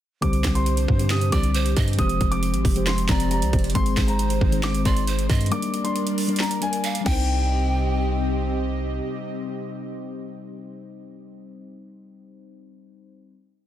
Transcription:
0.21 C2 C3 D3 G3 C4 D4 G4 C5 D6, kick, closed hi-hat
0.33 closed hi-hat
0.44 C2 C5, kick, snare, clap, closed hi-hat
0.54 D3 G3 C4 G4 C5 C6, closed hi-hat
0.66 closed hi-hat
0.77 closed hi-hat
0.88 G2, kick
0.98 D3 G3 C4 G4 C5, closed hi-hat
1.10 D#6, snare, clap, closed hi-hat
1.21 closed hi-hat
1.31 C2 D3 G3 C4 G4 C5 D5 D6, kick, closed hi-hat
1.43 closed hi-hat
1.54 C5, closed hi-hat
1.66 closed hi-hat
1.77 G2 D#5, kick, closed hi-hat
1.82 closed hi-hat
1.88 closed hi-hat
1.93 closed hi-hat
1.97 F1 F3 G#3 C4 G4 C5 D#6, kick, closed hi-hat
2.09 closed hi-hat
2.21 F1, kick, closed hi-hat
2.30 F3 G#3 C4 G4 C5 D6, closed hi-hat
2.43 closed hi-hat
2.54 G#1, closed hi-hat
2.65 F1, kick, open hi-hat
2.75 F3 G#3 C4 G4 C5, closed hi-hat
2.87 C6, snare, clap, closed hi-hat
2.98 closed hi-hat
3.08 F1 F3 G#3 C4 G4 C5 D5 A#5, kick, snare, clap, closed hi-hat
3.20 closed hi-hat
3.31 A#5, closed hi-hat
3.42 C2, closed hi-hat
3.52 F1 F3 G#3 C4 G4 C5, kick, closed hi-hat
3.59 closed hi-hat
3.64 closed hi-hat
3.70 closed hi-hat
3.74 G#1 D#3 G#3 C4 D#4 G#4 C5 C6, kick, closed hi-hat
3.86 closed hi-hat
3.97 G#1 C5, kick, snare, clap, closed hi-hat
4.07 D#3 G#3 C4 G#4 C5 A#5, closed hi-hat
4.19 closed hi-hat
4.30 closed hi-hat
4.41 G#1, kick
4.51 D#3 G#3 C4 G#4 C5, closed hi-hat
4.63 D6, snare, clap, closed hi-hat
4.74 closed hi-hat
4.84 G#1 D#3 G#3 C4 G#4 C5 D5 C6, kick, closed hi-hat
4.97 closed hi-hat
5.07 C5, closed hi-hat
5.19 closed hi-hat
5.30 G2 D#5, kick, closed hi-hat
5.35 closed hi-hat
5.41 closed hi-hat
5.46 closed hi-hat
5.50 G3 A#3 D4 A#4 D5 D6, closed hi-hat
5.62 closed hi-hat
5.74 closed hi-hat
5.83 G3 A#3 D4 A#4 D5 C6, closed hi-hat
5.96 closed hi-hat
6.07 closed hi-hat
6.18 open hi-hat
6.27 G3 A#3 D4 A#4 D5, closed hi-hat
6.36 A#5, snare, closed hi-hat
6.41 clap, closed hi-hat
6.51 closed hi-hat
6.60 G3 A#3 D4 A#4 D5 G#5, closed hi-hat
6.73 closed hi-hat
6.84 F5, closed hi-hat
6.95 closed hi-hat
7.00 G3 C4
7.06 C2 C3 C4 D#4 G4 D#5 G5, kick, crash
7.11 C5

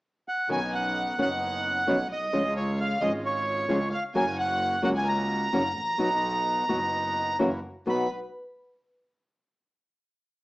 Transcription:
0.28 F#5
0.49 B1 B2 D#3 B3 C#4 D#4 F#4 G#5
0.73 F#5
1.18 F#1 B2 D#3 B3 C#4 D#4 F#4 F#5
1.87 B1 B2 D#3 B3 C#4 D#4 F#4
2.10 B1 D#5
2.33 C#2 C#3 F3 G#3 C#4 F4
2.56 C#5
2.79 F5
3.01 G#1 C#3 F3 G#3 C#4 F4 D#5
3.24 C#5
3.68 C#2 C#3 F3 G#3 C#4 F4
3.91 F5
4.14 F#1 C#3 F#3 A#3 C#4 F#4 G#5
4.37 F#5
4.82 C#2 C#3 F#3 A#3 C#4 F#4 F#5
4.95 G#5
5.08 A#5
5.52 F#1 C#3 F#3 A#3 C#4 F#4
5.76 A1
5.98 B1 B2 F#3 B3 D#4 F#4
6.69 F#1 B2 F#3 B3 D#4 F#4
7.39 F#1 C#3 E3 A#3 C#4 E4 F#4
7.86 B1 B2 F#3 B3 D#4 F#4 B4 B5

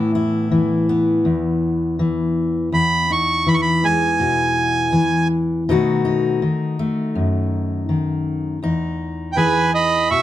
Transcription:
Already playing: A2 E3 B3 E4
0.15 E4
0.51 E3
0.89 B3
1.25 E2
1.99 E3
2.72 E2 B5
3.10 D#4 C#6
3.46 E3 B5
3.54 C#6
3.62 B5
3.84 G#3 G#5
4.20 B2
4.92 E3
5.69 B2 D#3 A3 D#4 F#4
6.05 D#4
6.42 D#3
6.79 A3
7.15 F#2
7.89 D#3
8.62 E2 D#4
9.33 G5
9.37 E3 G#4 B4 G#5
9.74 D#5 B5
10.10 B2 E5 C#6

